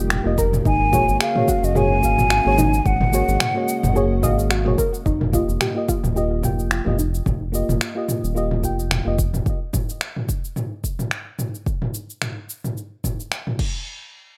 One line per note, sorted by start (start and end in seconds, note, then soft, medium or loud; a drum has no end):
0.00 0.20 F1 medium
0.00 0.62 D#3 medium
0.00 0.61 G3 medium
0.00 0.21 A#3 medium
0.00 5.02 A#3 medium
0.00 0.22 F4 medium
0.00 0.22 G4 medium
0.00 0.63 G4 medium
0.00 0.23 G5 loud
0.10 finger snap loud
0.10 mid tom medium
0.10 cabasa soft
0.24 0.61 F1 loud
0.24 0.37 A#3 medium
0.24 0.37 F4 medium
0.24 0.38 G4 medium
0.24 0.38 D#5 loud
0.38 0.63 A#4 loud
0.38 kick loud
0.38 cabasa medium
0.53 mid tom medium
0.53 cabasa soft
0.65 1.03 G#1 loud
0.65 5.02 C#3 medium
0.65 5.02 G#3 medium
0.65 0.91 D#4 medium
0.65 2.83 F#4 medium
0.65 1.17 G#5 loud
0.65 kick loud
0.65 cabasa soft
0.91 1.31 A#3 medium
0.91 1.32 F#4 medium
0.91 1.18 F#4 medium
0.91 1.32 G#4 medium
0.91 1.33 C#5 loud
0.91 kick loud
0.91 mid tom medium
0.91 cabasa medium
1.09 1.18 G#1 loud
1.09 cabasa soft
1.21 1.47 G#4 loud
1.21 1.66 F5 loud
1.21 finger snap loud
1.21 cabasa soft
1.35 1.72 A#3 medium
1.35 1.72 F#4 medium
1.35 1.73 G#4 medium
1.35 1.73 C#5 medium
1.35 mid tom medium
1.48 1.64 F#4 loud
1.48 kick loud
1.48 cabasa medium
1.63 2.04 F#1 medium
1.63 1.78 D#5 loud
1.63 cabasa soft
1.74 2.00 A#3 medium
1.74 2.00 F#4 medium
1.74 1.92 G#4 medium
1.74 2.01 G#4 medium
1.74 2.01 C#5 loud
1.74 2.88 G#5 loud
1.74 mid tom medium
1.74 cabasa soft
2.02 2.40 G#1 medium
2.02 2.42 A#3 medium
2.02 2.42 F#4 medium
2.02 2.43 G#4 medium
2.02 2.43 F5 medium
2.02 kick medium
2.02 cabasa medium
2.18 mid tom medium
2.18 cabasa soft
2.30 2.57 F#4 medium
2.30 finger snap medium
2.30 cabasa soft
2.44 2.81 G#1 medium
2.44 2.57 A#3 medium
2.44 2.57 F#4 medium
2.44 2.58 G#4 medium
2.44 2.58 C#5 medium
2.58 2.83 D#4 loud
2.58 mid tom medium
2.58 cabasa medium
2.74 cabasa soft
2.85 3.23 G#1 loud
2.85 5.03 D#5 medium
2.85 4.51 F#5 loud
2.85 kick loud
2.85 cabasa soft
3.01 mid tom medium
3.12 3.52 A#3 medium
3.12 3.52 F#4 medium
3.12 3.38 F#4 medium
3.12 3.53 G#4 medium
3.12 3.53 C#5 loud
3.12 cabasa medium
3.28 3.38 G#1 loud
3.28 cabasa soft
3.40 finger snap loud
3.40 mid tom medium
3.40 cabasa soft
3.54 3.92 A#3 medium
3.54 3.92 F#4 medium
3.54 3.93 G#4 medium
3.54 3.93 C#5 medium
3.69 cabasa medium
3.83 4.25 F#1 medium
3.83 mid tom medium
3.83 cabasa soft
3.94 4.20 A#3 medium
3.94 4.20 F#4 medium
3.94 4.21 G#4 medium
3.94 4.21 C#5 loud
3.94 cabasa soft
4.21 4.68 G#1 loud
4.21 4.61 A#3 medium
4.21 4.62 F#4 medium
4.21 4.62 G#4 medium
4.21 4.49 D#5 loud
4.21 4.63 F5 medium
4.21 kick medium
4.21 mid tom medium
4.21 cabasa medium
4.39 cabasa soft
4.51 4.76 F#4 loud
4.51 finger snap loud
4.51 cabasa soft
4.64 4.75 F#1 loud
4.64 4.77 A#3 medium
4.64 4.78 F#4 medium
4.64 4.78 G#4 medium
4.64 4.79 C#5 loud
4.64 mid tom medium
4.78 5.03 A#4 medium
4.78 kick loud
4.78 cabasa medium
4.94 cabasa soft
5.06 5.43 F1 medium
5.06 5.31 D#4 medium
5.06 kick loud
5.06 cabasa soft
5.21 mid tom medium
5.32 5.72 A#3 medium
5.32 5.72 F4 medium
5.32 5.59 F4 medium
5.32 5.73 G4 medium
5.32 5.73 D#5 medium
5.32 kick loud
5.32 cabasa medium
5.49 5.58 F1 loud
5.49 cabasa soft
5.61 5.87 G4 loud
5.61 finger snap loud
5.61 mid tom medium
5.61 cabasa soft
5.74 6.12 A#3 medium
5.74 6.13 F4 medium
5.74 6.13 G4 medium
5.74 6.14 D#5 medium
5.88 6.05 F4 medium
5.88 kick loud
5.88 cabasa medium
6.04 6.45 D#1 medium
6.04 mid tom medium
6.04 cabasa soft
6.14 6.40 A#3 medium
6.14 6.41 F4 medium
6.14 6.32 G4 medium
6.14 6.41 G4 medium
6.14 6.42 D#5 medium
6.14 cabasa soft
6.42 6.81 F1 medium
6.42 6.82 A#3 medium
6.42 6.82 F4 medium
6.42 6.83 G4 medium
6.42 6.83 G5 medium
6.42 kick medium
6.42 mid tom medium
6.42 cabasa medium
6.59 cabasa soft
6.71 6.97 F4 medium
6.71 finger snap medium
6.71 cabasa soft
6.85 7.22 F1 loud
6.85 6.97 A#3 medium
6.85 6.98 F4 medium
6.85 6.98 G4 medium
6.85 6.99 D#5 medium
6.85 mid tom medium
6.98 7.23 D#4 medium
6.98 cabasa medium
7.15 cabasa soft
7.26 7.64 F1 medium
7.26 kick loud
7.26 mid tom medium
7.26 cabasa soft
7.52 7.92 A#3 medium
7.52 7.92 F4 medium
7.52 7.93 G4 medium
7.52 7.93 D#5 medium
7.52 cabasa medium
7.69 7.78 F1 medium
7.69 mid tom medium
7.69 cabasa soft
7.81 finger snap medium
7.81 cabasa soft
7.95 8.32 A#3 medium
7.95 8.33 F4 medium
7.95 8.33 G4 medium
7.95 8.34 D#5 medium
8.09 mid tom medium
8.09 cabasa medium
8.24 8.65 D#1 medium
8.24 cabasa soft
8.35 8.60 A#3 medium
8.35 8.61 F4 medium
8.35 8.61 G4 medium
8.35 8.62 D#5 medium
8.35 cabasa soft
8.51 mid tom medium
8.62 9.01 F1 medium
8.62 9.02 A#3 medium
8.62 9.02 F4 medium
8.62 9.03 G4 medium
8.62 9.03 G5 medium
8.62 kick medium
8.62 cabasa medium
8.79 cabasa soft
8.91 finger snap medium
8.91 mid tom medium
8.91 cabasa soft
9.05 9.42 F1 medium
9.05 9.17 A#3 medium
9.05 9.18 F4 medium
9.05 9.18 G4 medium
9.05 9.19 D#5 medium
9.19 kick loud
9.19 cabasa medium
9.34 mid tom medium
9.34 cabasa soft
9.46 kick loud
9.46 cabasa soft
9.73 kick loud
9.73 mid tom medium
9.73 cabasa medium
9.89 cabasa soft
10.01 finger snap medium
10.01 cabasa soft
10.16 mid tom medium
10.29 kick loud
10.29 cabasa medium
10.45 cabasa soft
10.56 mid tom medium
10.56 cabasa soft
10.84 kick medium
10.84 cabasa medium
10.99 mid tom medium
10.99 cabasa soft
11.11 finger snap medium
11.11 cabasa soft
11.39 mid tom medium
11.39 cabasa medium
11.55 cabasa soft
11.66 kick loud
11.66 cabasa soft
11.82 mid tom medium
11.94 cabasa medium
12.10 cabasa soft
12.22 finger snap medium
12.22 mid tom medium
12.22 cabasa soft
12.50 cabasa medium
12.64 mid tom medium
12.64 cabasa soft
12.77 cabasa soft
13.04 kick soft
13.04 mid tom medium
13.04 cabasa medium
13.20 cabasa soft
13.32 finger snap medium
13.32 cabasa soft
13.47 mid tom medium
13.59 kick loud
13.59 crash medium